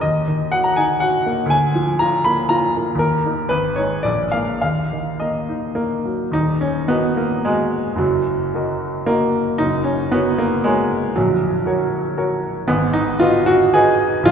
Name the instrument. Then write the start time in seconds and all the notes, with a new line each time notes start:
grand piano
0.01 D#2 D#5
0.28 D#3
0.52 F#4 F#5
0.64 A#5
0.76 D#4 G#5
1.00 F#4 F#5
1.26 A#3
1.46 D2
1.50 G#5
1.75 F3
1.99 F4 A#5
2.24 A#3 B5
2.49 F4 A#5
2.76 A#3
2.95 D#2
2.99 A#4
3.26 A#3 D#4
3.49 G#1 B4
3.76 G#3 D#4 C#5
4.03 A#1 D5
4.32 G#3 A#3 F5
4.62 D#2 F5
4.92 D#3
5.20 A#3 D#5
5.49 D#4
5.75 A#3
6.05 F#3
6.31 D#1 D#2 D#4
6.61 C#4
6.88 B3 F#4 A#4 D#5
7.17 A#3
7.45 G#3 F#4 A#4 D#5
7.93 F#2 G#3
7.98 F#1 F#3
8.54 F#4 A#4 D#5
9.06 A#3 F#4 A#4 D#5
9.58 F#1 F#2 D#4
9.84 C#4
10.12 B3 F#4 A#4 C#5
10.38 A#3
10.64 G#3 F#4 A#4 C#5
11.16 A#0 A#1 F#3
11.66 F#4 A#4 C#5
12.17 F#4 A#4 C#5
12.68 G#1 G#2 B3
12.93 D#4
13.20 F4 F#4 B4 D#5
13.46 F#4
13.74 F#4 G#4 B4 D#5
14.23 A#0 A#1 F4